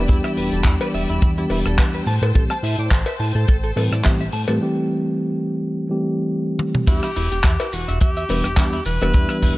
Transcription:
Already playing: string section D5 G5 B5 E6
0.07 analog synth bass E2, tine electric piano E3 G3 B3 D4 G4, clean electric guitar E4, kick, closed hi-hat
0.24 clean electric guitar E5, cross-stick, closed hi-hat
0.37 analog synth bass E1, clean electric guitar B4, open hi-hat
0.52 analog synth bass E1, clean electric guitar A4, closed hi-hat
0.64 analog synth bass E2, clean electric guitar E4, kick, clap, closed hi-hat
0.81 clean electric guitar B4, closed hi-hat, cowbell
0.93 analog synth bass E1, clean electric guitar E5, open hi-hat
1.09 analog synth bass E1, clean electric guitar E4, closed hi-hat
1.22 analog synth bass E2, clean electric guitar E4, kick, closed hi-hat
1.37 tine electric piano E3 G3 B3 D4 G4, clean electric guitar E4, closed hi-hat
1.50 analog synth bass E1, clean electric guitar E4, open hi-hat, cowbell
1.64 analog synth bass E1, clean electric guitar A4, cross-stick, closed hi-hat
1.78 analog synth bass E2, clean electric guitar B4, kick, clap, closed hi-hat
1.94 clean electric guitar B4, closed hi-hat
2.06 analog synth bass A2, string section C5 A5, clean electric guitar A5, open hi-hat
2.22 analog synth bass A2, clean electric guitar A4, closed hi-hat, cowbell
2.34 analog synth bass A1, tine electric piano E3 G3 A3 C4 G4, clean electric guitar A4, kick, closed hi-hat
2.50 clean electric guitar A5, cross-stick, closed hi-hat
2.63 analog synth bass A2, clean electric guitar E5, open hi-hat
2.78 analog synth bass A2, clean electric guitar D5, closed hi-hat
2.91 analog synth bass A1, clean electric guitar A4, kick, clap, closed hi-hat
3.06 clean electric guitar E5, closed hi-hat, cowbell
3.19 analog synth bass A2, clean electric guitar A5, open hi-hat
3.35 analog synth bass A2, clean electric guitar A4, closed hi-hat
3.48 analog synth bass A1, clean electric guitar A4, kick, closed hi-hat
3.64 clean electric guitar A4, closed hi-hat
3.76 analog synth bass A2, tine electric piano E3 G3 A3 C4 B4, clean electric guitar A4, open hi-hat, cowbell
3.92 analog synth bass A2, clean electric guitar D5, cross-stick, closed hi-hat
4.04 analog synth bass A1, tine electric piano E3 G3 A3 C4 G4, clean electric guitar E5, kick, clap, closed hi-hat
4.21 clean electric guitar E5, closed hi-hat
4.32 analog synth bass A2, clean electric guitar A5, open hi-hat
4.48 analog synth bass A2, tine electric piano E3 G3 A3 C4 G4, clean electric guitar A4, closed hi-hat, cowbell
4.61 tine electric piano E3 G3 A3 C4 G4
5.89 tine electric piano E3 G3 A3 C4 G4
6.59 high tom
6.75 mid tom
6.87 analog synth bass E2, tine electric piano E3 G3 B3 D4 G4, clean electric guitar E4, tenor saxophone G4, kick, closed hi-hat, crash, shaker
7.03 clean electric guitar E4, cross-stick, closed hi-hat, shaker
7.16 analog synth bass E1, clean electric guitar E4, open hi-hat, shaker
7.32 analog synth bass E1, clean electric guitar G4, closed hi-hat, shaker
7.44 analog synth bass E2, clean electric guitar E4, kick, clap, closed hi-hat, shaker
7.60 clean electric guitar E4, closed hi-hat, cowbell, shaker
7.72 analog synth bass E1, clean electric guitar E3, tenor saxophone F#4, open hi-hat, shaker
7.88 analog synth bass E1, clean electric guitar E5, closed hi-hat, shaker
8.01 analog synth bass E2, tenor saxophone G4, clean electric guitar E5, kick, closed hi-hat, shaker
8.16 clean electric guitar E5, closed hi-hat, shaker
8.29 analog synth bass E1, tine electric piano E3 G3 B3 D4 B4, clean electric guitar E4, open hi-hat, cowbell, shaker
8.44 analog synth bass E1, clean electric guitar G4, cross-stick, closed hi-hat, shaker
8.57 analog synth bass E2, tine electric piano E3 G3 B3 D4 G4, clean electric guitar E4, kick, clap, closed hi-hat, shaker
8.73 clean electric guitar E4, closed hi-hat, shaker
8.85 analog synth bass E1, clean electric guitar E3, tenor saxophone B4, open hi-hat, shaker
9.01 analog synth bass E1, tine electric piano E3 G3 B3 D4 G4, clean electric guitar E5, closed hi-hat, cowbell, shaker
9.13 analog synth bass E2, tine electric piano E3 G3 B3 D4 G4, clean electric guitar E4, kick, closed hi-hat, shaker
9.29 clean electric guitar E4, cross-stick, closed hi-hat, shaker
9.42 analog synth bass E1, clean electric guitar E4, kick, open hi-hat, shaker

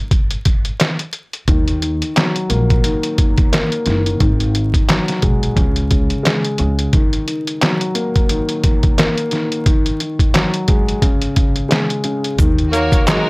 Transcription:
0.11 kick, closed hi-hat
0.31 closed hi-hat
0.45 kick, closed hi-hat
0.65 closed hi-hat
0.80 snare, clap, closed hi-hat
0.99 closed hi-hat
1.13 closed hi-hat
1.33 closed hi-hat
1.48 upright bass D#2, grand piano D#3, kick, closed hi-hat
1.68 closed hi-hat
1.82 grand piano D#3, closed hi-hat
2.02 closed hi-hat
2.16 grand piano F#3, snare, clap, closed hi-hat
2.36 closed hi-hat
2.49 upright bass A#1, grand piano A#3, closed hi-hat
2.70 kick, closed hi-hat
2.84 grand piano D#3, closed hi-hat
3.03 closed hi-hat
3.18 grand piano D#3, kick, closed hi-hat
3.38 kick, closed hi-hat
3.52 grand piano A#3, snare, clap, closed hi-hat
3.72 closed hi-hat
3.86 upright bass F#1, grand piano D#3, snare, closed hi-hat
4.06 closed hi-hat
4.20 upright bass G#1, grand piano D#3, kick, closed hi-hat
4.40 closed hi-hat
4.55 grand piano D#3, closed hi-hat
4.74 kick, closed hi-hat
4.89 grand piano F#3, snare, clap, closed hi-hat
5.08 snare, closed hi-hat
5.22 upright bass B1, grand piano G#3, kick, closed hi-hat
5.43 closed hi-hat
5.56 upright bass C#2, grand piano C#3, kick, closed hi-hat
5.76 closed hi-hat
5.90 grand piano C#3, kick, closed hi-hat
6.10 closed hi-hat
6.23 grand piano G#3, snare, clap, closed hi-hat
6.45 closed hi-hat
6.58 upright bass C#2, grand piano C#3, closed hi-hat
6.79 closed hi-hat
6.93 grand piano D#3, kick, closed hi-hat
7.13 closed hi-hat
7.27 grand piano D#3, closed hi-hat
7.47 closed hi-hat
7.62 grand piano F#3, snare, clap, closed hi-hat
7.81 closed hi-hat
7.95 grand piano A#3, closed hi-hat
8.16 kick, closed hi-hat
8.29 grand piano D#3, closed hi-hat
8.49 closed hi-hat
8.64 grand piano D#3, kick, closed hi-hat
8.83 kick, closed hi-hat
8.98 grand piano A#3, snare, clap, closed hi-hat
9.18 closed hi-hat
9.31 grand piano D#3, snare, closed hi-hat
9.52 closed hi-hat
9.66 grand piano D#3, kick, closed hi-hat
9.86 closed hi-hat
10.00 grand piano D#3, closed hi-hat
10.19 kick, closed hi-hat
10.34 grand piano F#3, snare, clap, closed hi-hat
10.54 closed hi-hat
10.68 grand piano G#3, kick, closed hi-hat
10.88 closed hi-hat
11.02 grand piano C#3, kick, closed hi-hat
11.22 closed hi-hat
11.36 grand piano C#3, kick, closed hi-hat
11.56 closed hi-hat
11.69 grand piano G#3, snare, clap, closed hi-hat
11.90 closed hi-hat
12.04 grand piano C#3, closed hi-hat
12.24 closed hi-hat
12.39 upright bass D#2, grand piano D#3, kick, closed hi-hat, shaker
12.58 closed hi-hat
12.72 grand piano D#3, tenor saxophone A#3, string section F#4 A#4 C#5, closed hi-hat, shaker
12.92 kick, closed hi-hat, shaker
13.06 grand piano F#3, tenor saxophone G#3, string section D#4 F#4 A#4, snare, clap, closed hi-hat, shaker

